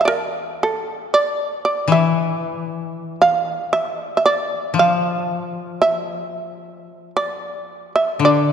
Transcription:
0, 0, Header, 1, 3, 480
1, 0, Start_track
1, 0, Tempo, 1047120
1, 17, Time_signature, 4, 2, 24, 8
1, 1937, Tempo, 1067616
1, 3870, End_track
2, 0, Start_track
2, 0, Title_t, "Shamisen"
2, 0, Program_c, 0, 106
2, 3, Note_on_c, 0, 76, 54
2, 24, Note_on_c, 0, 74, 66
2, 35, Note_on_c, 0, 70, 102
2, 58, Note_off_c, 0, 76, 0
2, 76, Note_off_c, 0, 74, 0
2, 256, Note_off_c, 0, 70, 0
2, 289, Note_on_c, 0, 69, 81
2, 504, Note_off_c, 0, 69, 0
2, 522, Note_on_c, 0, 74, 88
2, 669, Note_off_c, 0, 74, 0
2, 669, Note_on_c, 0, 70, 88
2, 738, Note_off_c, 0, 70, 0
2, 756, Note_on_c, 0, 74, 86
2, 862, Note_off_c, 0, 74, 0
2, 880, Note_on_c, 0, 76, 87
2, 1444, Note_off_c, 0, 76, 0
2, 1474, Note_on_c, 0, 77, 100
2, 1687, Note_off_c, 0, 77, 0
2, 1709, Note_on_c, 0, 76, 105
2, 1833, Note_off_c, 0, 76, 0
2, 1833, Note_on_c, 0, 74, 105
2, 1898, Note_off_c, 0, 74, 0
2, 1912, Note_on_c, 0, 76, 78
2, 1940, Note_off_c, 0, 76, 0
2, 1950, Note_on_c, 0, 74, 104
2, 2166, Note_off_c, 0, 74, 0
2, 2192, Note_on_c, 0, 77, 108
2, 2642, Note_off_c, 0, 77, 0
2, 2652, Note_on_c, 0, 76, 97
2, 3230, Note_off_c, 0, 76, 0
2, 3259, Note_on_c, 0, 74, 91
2, 3598, Note_off_c, 0, 74, 0
2, 3614, Note_on_c, 0, 76, 83
2, 3726, Note_off_c, 0, 76, 0
2, 3746, Note_on_c, 0, 74, 85
2, 3870, Note_off_c, 0, 74, 0
2, 3870, End_track
3, 0, Start_track
3, 0, Title_t, "Koto"
3, 0, Program_c, 1, 107
3, 0, Note_on_c, 1, 52, 59
3, 260, Note_off_c, 1, 52, 0
3, 860, Note_on_c, 1, 52, 70
3, 2167, Note_on_c, 1, 53, 70
3, 2291, Note_off_c, 1, 52, 0
3, 3606, Note_off_c, 1, 53, 0
3, 3721, Note_on_c, 1, 50, 64
3, 3870, Note_off_c, 1, 50, 0
3, 3870, End_track
0, 0, End_of_file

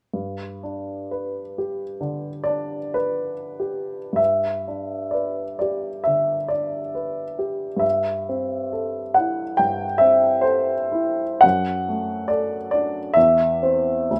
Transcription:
0, 0, Header, 1, 2, 480
1, 0, Start_track
1, 0, Key_signature, 1, "major"
1, 0, Tempo, 986842
1, 62, Time_signature, 4, 2, 24, 8
1, 541, Tempo, 895522
1, 1021, Tempo, 963082
1, 1501, Tempo, 1217039
1, 1981, Tempo, 960000
1, 2461, Tempo, 931677
1, 2941, Tempo, 887574
1, 4381, Tempo, 853485
1, 5341, Tempo, 986842
1, 5821, Tempo, 860832
1, 6781, Tempo, 950872
1, 7306, End_track
2, 0, Start_track
2, 0, Title_t, "Grand piano"
2, 0, Program_c, 0, 0
2, 66, Note_on_c, 0, 43, 28
2, 172, Control_c, 0, 64, 127
2, 308, Note_on_c, 0, 62, 26
2, 542, Note_on_c, 0, 71, 31
2, 689, Note_off_c, 0, 62, 0
2, 793, Note_on_c, 0, 67, 24
2, 926, Note_off_c, 0, 71, 0
2, 1001, Note_off_c, 0, 43, 0
2, 1020, Note_on_c, 0, 50, 32
2, 1160, Note_off_c, 0, 67, 0
2, 1234, Note_on_c, 0, 74, 56
2, 1249, Note_on_c, 0, 62, 37
2, 1396, Note_off_c, 0, 50, 0
2, 1486, Note_on_c, 0, 71, 49
2, 1493, Note_off_c, 0, 74, 0
2, 1494, Note_off_c, 0, 71, 0
2, 1500, Note_on_c, 0, 71, 32
2, 1638, Note_off_c, 0, 62, 0
2, 1748, Note_on_c, 0, 67, 29
2, 1895, Note_off_c, 0, 71, 0
2, 1958, Note_on_c, 0, 43, 30
2, 1970, Note_on_c, 0, 76, 49
2, 1983, Note_off_c, 0, 67, 0
2, 1989, Control_c, 0, 64, 0
2, 2095, Control_c, 0, 64, 127
2, 2226, Note_on_c, 0, 62, 25
2, 2442, Note_on_c, 0, 74, 36
2, 2454, Note_off_c, 0, 76, 0
2, 2454, Note_on_c, 0, 71, 27
2, 2606, Note_off_c, 0, 62, 0
2, 2680, Note_off_c, 0, 74, 0
2, 2688, Note_on_c, 0, 74, 42
2, 2701, Note_on_c, 0, 67, 24
2, 2843, Note_off_c, 0, 71, 0
2, 2905, Note_off_c, 0, 43, 0
2, 2919, Note_on_c, 0, 76, 52
2, 2933, Note_off_c, 0, 74, 0
2, 2934, Note_on_c, 0, 50, 25
2, 3085, Note_off_c, 0, 67, 0
2, 3160, Note_on_c, 0, 74, 46
2, 3170, Note_off_c, 0, 76, 0
2, 3175, Note_on_c, 0, 62, 26
2, 3320, Note_off_c, 0, 50, 0
2, 3410, Note_on_c, 0, 71, 24
2, 3556, Note_off_c, 0, 62, 0
2, 3648, Note_on_c, 0, 67, 25
2, 3794, Note_off_c, 0, 71, 0
2, 3852, Note_on_c, 0, 43, 31
2, 3868, Note_on_c, 0, 76, 51
2, 3883, Note_off_c, 0, 74, 0
2, 3891, Note_off_c, 0, 67, 0
2, 3903, Control_c, 0, 64, 0
2, 3985, Control_c, 0, 64, 127
2, 4136, Note_on_c, 0, 60, 27
2, 4372, Note_on_c, 0, 69, 30
2, 4530, Note_off_c, 0, 60, 0
2, 4607, Note_on_c, 0, 78, 50
2, 4615, Note_off_c, 0, 76, 0
2, 4624, Note_on_c, 0, 64, 28
2, 4768, Note_off_c, 0, 69, 0
2, 4822, Note_off_c, 0, 43, 0
2, 4847, Note_on_c, 0, 79, 60
2, 4856, Note_off_c, 0, 78, 0
2, 4859, Note_on_c, 0, 43, 29
2, 5005, Note_off_c, 0, 64, 0
2, 5077, Note_on_c, 0, 76, 63
2, 5091, Note_off_c, 0, 79, 0
2, 5093, Note_on_c, 0, 60, 29
2, 5321, Note_on_c, 0, 72, 55
2, 5329, Note_off_c, 0, 76, 0
2, 5333, Note_on_c, 0, 69, 33
2, 5472, Note_off_c, 0, 60, 0
2, 5570, Note_on_c, 0, 64, 32
2, 5722, Note_off_c, 0, 69, 0
2, 5798, Note_off_c, 0, 43, 0
2, 5807, Note_on_c, 0, 78, 69
2, 5812, Note_off_c, 0, 72, 0
2, 5818, Note_off_c, 0, 64, 0
2, 5821, Note_on_c, 0, 42, 39
2, 5830, Control_c, 0, 64, 0
2, 5927, Control_c, 0, 64, 127
2, 6072, Note_on_c, 0, 57, 34
2, 6291, Note_on_c, 0, 74, 62
2, 6296, Note_off_c, 0, 78, 0
2, 6306, Note_on_c, 0, 69, 33
2, 6444, Note_off_c, 0, 57, 0
2, 6524, Note_off_c, 0, 74, 0
2, 6532, Note_on_c, 0, 74, 60
2, 6546, Note_on_c, 0, 62, 32
2, 6683, Note_off_c, 0, 69, 0
2, 6758, Note_off_c, 0, 42, 0
2, 6768, Note_on_c, 0, 76, 72
2, 6778, Note_off_c, 0, 74, 0
2, 6784, Note_off_c, 0, 62, 0
2, 6784, Note_on_c, 0, 40, 43
2, 6789, Control_c, 0, 64, 0
2, 6880, Control_c, 0, 64, 127
2, 7017, Note_on_c, 0, 60, 35
2, 7019, Note_on_c, 0, 72, 34
2, 7240, Note_off_c, 0, 60, 0
2, 7241, Note_off_c, 0, 72, 0
2, 7245, Note_off_c, 0, 40, 0
2, 7259, Note_on_c, 0, 38, 35
2, 7268, Control_c, 0, 64, 0
2, 7306, Note_off_c, 0, 38, 0
2, 7306, Note_off_c, 0, 76, 0
2, 7306, End_track
0, 0, End_of_file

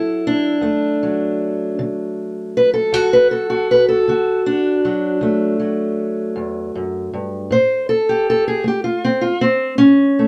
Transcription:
0, 0, Header, 1, 2, 480
1, 0, Start_track
1, 0, Tempo, 762389
1, 1847, Time_signature, 12, 3, 24, 8
1, 6470, End_track
2, 0, Start_track
2, 0, Title_t, "Steel-string acoustic guitar"
2, 0, Program_c, 0, 25
2, 0, Note_on_c, 0, 50, 61
2, 0, Note_on_c, 0, 54, 50
2, 0, Note_on_c, 0, 64, 77
2, 0, Note_on_c, 0, 69, 80
2, 115, Note_off_c, 0, 50, 0
2, 165, Note_off_c, 0, 69, 0
2, 170, Note_on_c, 0, 62, 88
2, 385, Note_on_c, 0, 38, 67
2, 390, Note_off_c, 0, 64, 0
2, 393, Note_on_c, 0, 57, 49
2, 640, Note_off_c, 0, 54, 0
2, 647, Note_on_c, 0, 54, 46
2, 828, Note_off_c, 0, 38, 0
2, 1126, Note_on_c, 0, 50, 63
2, 1559, Note_off_c, 0, 50, 0
2, 1609, Note_off_c, 0, 62, 0
2, 1618, Note_on_c, 0, 71, 89
2, 1720, Note_off_c, 0, 71, 0
2, 1722, Note_on_c, 0, 69, 77
2, 1841, Note_on_c, 0, 38, 68
2, 1849, Note_off_c, 0, 57, 0
2, 1849, Note_on_c, 0, 66, 81
2, 1965, Note_off_c, 0, 69, 0
2, 1971, Note_on_c, 0, 71, 90
2, 2082, Note_off_c, 0, 71, 0
2, 2084, Note_on_c, 0, 69, 77
2, 2195, Note_off_c, 0, 66, 0
2, 2202, Note_on_c, 0, 66, 87
2, 2276, Note_off_c, 0, 38, 0
2, 2326, Note_off_c, 0, 69, 0
2, 2336, Note_on_c, 0, 71, 84
2, 2444, Note_off_c, 0, 71, 0
2, 2446, Note_on_c, 0, 69, 79
2, 2565, Note_off_c, 0, 66, 0
2, 2567, Note_on_c, 0, 50, 58
2, 2575, Note_on_c, 0, 66, 72
2, 2807, Note_off_c, 0, 69, 0
2, 2810, Note_on_c, 0, 62, 83
2, 2999, Note_off_c, 0, 50, 0
2, 3044, Note_off_c, 0, 54, 0
2, 3052, Note_on_c, 0, 54, 42
2, 3280, Note_on_c, 0, 38, 71
2, 3286, Note_off_c, 0, 66, 0
2, 3289, Note_on_c, 0, 57, 48
2, 3515, Note_off_c, 0, 54, 0
2, 3523, Note_on_c, 0, 54, 44
2, 3715, Note_off_c, 0, 38, 0
2, 4002, Note_on_c, 0, 40, 53
2, 4244, Note_off_c, 0, 40, 0
2, 4248, Note_off_c, 0, 62, 0
2, 4253, Note_on_c, 0, 42, 57
2, 4489, Note_off_c, 0, 42, 0
2, 4492, Note_on_c, 0, 43, 54
2, 4724, Note_off_c, 0, 54, 0
2, 4726, Note_on_c, 0, 45, 64
2, 4729, Note_off_c, 0, 43, 0
2, 4735, Note_on_c, 0, 72, 84
2, 4965, Note_off_c, 0, 72, 0
2, 4968, Note_on_c, 0, 69, 79
2, 5092, Note_off_c, 0, 57, 0
2, 5095, Note_on_c, 0, 67, 72
2, 5157, Note_off_c, 0, 45, 0
2, 5206, Note_off_c, 0, 69, 0
2, 5224, Note_on_c, 0, 69, 80
2, 5334, Note_off_c, 0, 69, 0
2, 5337, Note_on_c, 0, 68, 68
2, 5440, Note_on_c, 0, 57, 57
2, 5450, Note_off_c, 0, 67, 0
2, 5451, Note_off_c, 0, 68, 0
2, 5463, Note_on_c, 0, 67, 68
2, 5563, Note_off_c, 0, 67, 0
2, 5565, Note_on_c, 0, 65, 71
2, 5685, Note_off_c, 0, 65, 0
2, 5695, Note_on_c, 0, 60, 77
2, 5801, Note_on_c, 0, 65, 73
2, 5810, Note_off_c, 0, 60, 0
2, 5874, Note_off_c, 0, 57, 0
2, 5923, Note_off_c, 0, 65, 0
2, 5926, Note_on_c, 0, 60, 88
2, 6155, Note_off_c, 0, 60, 0
2, 6157, Note_on_c, 0, 61, 87
2, 6161, Note_on_c, 0, 45, 65
2, 6416, Note_on_c, 0, 57, 41
2, 6470, Note_off_c, 0, 45, 0
2, 6470, Note_off_c, 0, 57, 0
2, 6470, Note_off_c, 0, 61, 0
2, 6470, End_track
0, 0, End_of_file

